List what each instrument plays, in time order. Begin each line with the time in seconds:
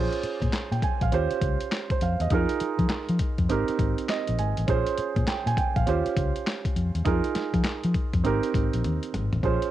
Already playing: grand piano C#4 F4 G#4 C5
0.12 closed hi-hat
0.23 muted fingered electric bass stroke, closed hi-hat
0.42 fingered electric bass A#2, kick, closed hi-hat
0.53 muted fingered electric bass stroke, snare, clap, closed hi-hat
0.71 fingered electric bass A#2, grand piano G5, closed hi-hat
0.82 grand piano G#5, kick, closed hi-hat
1.01 fingered electric bass A#1, grand piano F5, kick, closed hi-hat
1.12 fingered electric bass D#2, grand piano C#4 F4 G4 C5, closed hi-hat
1.31 closed hi-hat
1.41 fingered electric bass C#2, kick, closed hi-hat
1.60 closed hi-hat
1.72 snare, clap, closed hi-hat
1.90 grand piano C5, kick, closed hi-hat
2.01 fingered electric bass F2, grand piano F5, closed hi-hat
2.20 fingered electric bass E2, grand piano D#5, closed hi-hat
2.30 fingered electric bass F2, grand piano D#4 F4 G#4 A#4, kick, closed hi-hat
2.49 closed hi-hat
2.60 muted fingered electric bass stroke, closed hi-hat
2.79 fingered electric bass F3, kick, closed hi-hat
2.90 muted fingered electric bass stroke, snare, clap, closed hi-hat
3.09 fingered electric bass F3, closed hi-hat
3.19 kick, closed hi-hat
3.38 fingered electric bass F2, kick, closed hi-hat
3.49 fingered electric bass G#1, grand piano C4 D#4 G4 A#4, closed hi-hat
3.68 muted fingered electric bass stroke, closed hi-hat
3.79 fingered electric bass G#1, kick, closed hi-hat
3.98 closed hi-hat
4.09 grand piano D#5, snare, clap, closed hi-hat
4.27 fingered electric bass A#1, closed hi-hat
4.39 fingered electric bass G#1, grand piano G#5, closed hi-hat
4.57 fingered electric bass A1, closed hi-hat
4.67 fingered electric bass A#1, grand piano C#4 F4 G#4 C5, kick, closed hi-hat
4.87 closed hi-hat
4.98 muted fingered electric bass stroke, closed hi-hat
5.16 fingered electric bass A#2, kick, closed hi-hat
5.28 grand piano G5, muted fingered electric bass stroke, snare, clap, closed hi-hat
5.46 fingered electric bass A#2, grand piano G#5, closed hi-hat
5.57 grand piano G5, kick, closed hi-hat
5.76 fingered electric bass A#1, grand piano F5, kick, closed hi-hat
5.86 fingered electric bass D#2, grand piano C#4 F4 G4 C5, closed hi-hat
6.06 muted fingered electric bass stroke, closed hi-hat
6.17 fingered electric bass C#2, kick, closed hi-hat
6.36 closed hi-hat
6.47 snare, clap, closed hi-hat
6.65 kick, closed hi-hat
6.76 fingered electric bass F2, closed hi-hat
6.95 fingered electric bass E2, closed hi-hat
7.05 fingered electric bass F2, grand piano D#4 F4 G#4 A#4, kick, closed hi-hat
7.24 closed hi-hat
7.35 muted fingered electric bass stroke, snare, closed hi-hat
7.54 fingered electric bass F3, kick, closed hi-hat
7.64 muted fingered electric bass stroke, snare, clap, closed hi-hat
7.83 fingered electric bass F3, closed hi-hat
7.94 kick, closed hi-hat
8.13 fingered electric bass F2, kick, closed hi-hat
8.24 fingered electric bass G#1, grand piano C4 D#4 G4 A#4, closed hi-hat
8.43 closed hi-hat
8.54 fingered electric bass G#1, kick, closed hi-hat
8.73 fingered electric bass A#1, closed hi-hat
8.84 fingered electric bass D#2, closed hi-hat, high tom
9.03 closed hi-hat
9.14 fingered electric bass G#1, closed hi-hat, mid tom
9.33 fingered electric bass A1, closed hi-hat, floor tom
9.43 fingered electric bass A#1, grand piano C#4 F4 G#4 C5, kick, closed hi-hat
9.62 closed hi-hat